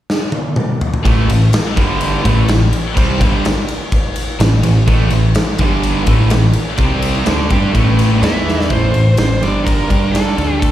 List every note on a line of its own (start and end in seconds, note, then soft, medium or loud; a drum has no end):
0.10 snare medium
0.32 high tom medium
0.56 mid tom medium
0.81 floor tom loud
0.94 floor tom loud
1.03 1.27 A1 medium
1.03 1.25 A2 medium
1.03 1.26 E3 medium
1.03 1.28 A3 loud
1.03 kick medium
1.03 ride medium
1.26 1.52 A1 medium
1.26 1.47 A2 medium
1.26 1.47 E3 medium
1.26 ride medium
1.53 snare loud
1.53 ride loud
1.75 2.21 G1 medium
1.75 2.23 G2 medium
1.75 2.24 D3 medium
1.75 2.24 G3 loud
1.75 kick loud
1.75 ride medium
2.01 ride loud
2.24 2.47 A1 medium
2.24 2.48 A2 medium
2.24 2.48 E3 medium
2.24 2.49 A3 loud
2.24 kick loud
2.24 ride medium
2.48 2.71 A1 medium
2.48 2.69 A2 medium
2.48 2.69 E3 medium
2.48 snare loud
2.48 ride loud
2.73 ride medium
2.97 3.19 C2 medium
2.97 3.20 C3 loud
2.97 3.20 G3 medium
2.97 3.21 C4 medium
2.97 kick loud
2.97 ride loud
3.20 3.43 G1 medium
3.20 3.44 G2 medium
3.20 3.45 D3 medium
3.20 3.45 G3 loud
3.20 kick loud
3.20 ride medium
3.45 snare loud
3.45 ride loud
3.68 ride medium
3.92 kick loud
3.92 ride medium
4.16 ride medium
4.39 4.62 A1 medium
4.39 4.59 A2 medium
4.39 4.59 E3 medium
4.39 snare loud
4.39 ride medium
4.63 4.86 A1 medium
4.63 4.83 A2 medium
4.63 4.83 E3 medium
4.63 ride medium
4.86 5.10 A1 loud
4.86 5.10 A2 medium
4.86 5.10 E3 loud
4.86 5.11 A3 loud
4.86 kick loud
4.86 ride medium
5.10 5.34 A1 medium
5.10 5.31 A2 medium
5.10 5.32 E3 medium
5.10 ride medium
5.35 snare loud
5.35 ride loud
5.58 6.04 G1 medium
5.58 6.07 G2 medium
5.58 6.07 D3 medium
5.58 6.07 G3 loud
5.58 kick loud
5.58 ride medium
5.83 ride loud
6.06 6.29 A1 medium
6.06 6.30 A2 medium
6.06 6.31 E3 medium
6.06 6.31 A3 loud
6.06 kick loud
6.06 ride medium
6.30 6.55 A1 medium
6.30 6.51 A2 medium
6.30 6.51 E3 medium
6.30 snare loud
6.30 ride loud
6.53 ride medium
6.78 7.23 C2 medium
6.78 7.26 C3 medium
6.78 7.26 G3 loud
6.78 7.27 C4 loud
6.78 kick loud
6.78 ride loud
7.02 ride medium
7.26 7.50 D2 medium
7.26 7.50 D3 loud
7.26 7.49 A3 loud
7.26 7.49 D4 loud
7.26 snare loud
7.26 ride loud
7.50 7.73 G2 medium
7.50 7.74 G3 medium
7.50 7.74 D4 medium
7.50 7.74 G4 loud
7.50 kick loud
7.50 ride medium
7.73 8.20 A1 medium
7.73 8.21 A2 medium
7.73 8.21 E3 medium
7.73 8.22 A3 loud
7.73 kick loud
7.73 ride medium
7.99 ride medium
8.22 8.67 E2 medium
8.22 8.68 E3 medium
8.22 8.69 B3 medium
8.22 8.69 E4 loud
8.22 8.72 E5 loud
8.22 snare loud
8.22 ride medium
8.36 snare soft
8.48 snare medium
8.60 snare medium
8.69 8.93 A1 medium
8.69 8.93 A2 medium
8.69 8.93 E3 medium
8.69 8.93 A3 loud
8.69 9.15 C5 medium
8.69 kick loud
8.69 ride medium
8.94 9.17 A1 medium
8.94 9.13 A2 medium
8.94 9.14 E3 medium
8.94 ride medium
9.17 9.41 A1 medium
9.17 9.38 A2 medium
9.17 9.38 E3 medium
9.17 9.43 C5 medium
9.17 snare loud
9.17 ride medium
9.43 9.87 G1 medium
9.43 9.90 G2 medium
9.43 9.90 D3 medium
9.43 9.87 G3 medium
9.43 9.67 D5 medium
9.43 ride medium
9.64 10.12 A#4 medium
9.64 kick loud
9.64 ride medium
9.88 10.35 G2 medium
9.88 10.36 G3 medium
9.88 10.36 D4 medium
9.88 10.37 G4 medium
9.88 kick medium
9.88 ride medium
10.13 10.59 A4 medium
10.13 snare loud
10.13 ride medium
10.36 10.71 D2 medium
10.36 10.71 D3 medium
10.36 10.71 A3 medium
10.36 10.71 D4 loud
10.36 ride medium
10.61 10.71 A4 medium
10.61 kick loud
10.61 ride medium